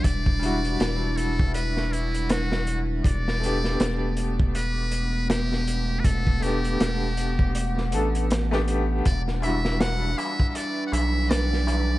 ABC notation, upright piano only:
X:1
M:4/4
L:1/16
Q:"Swing 16ths" 1/4=80
K:Em
V:1 name="Upright piano"
[G,DEF]2 [G,DEF]12- [G,DEF]2 | z2 [A,B,DG]12- [A,B,DG]2- | [A,B,DG]2 [A,B,DG]8 [A,B,DA]2 z [A,B,DG]3 | z2 [G,DEF]12- [G,DEF]2 |]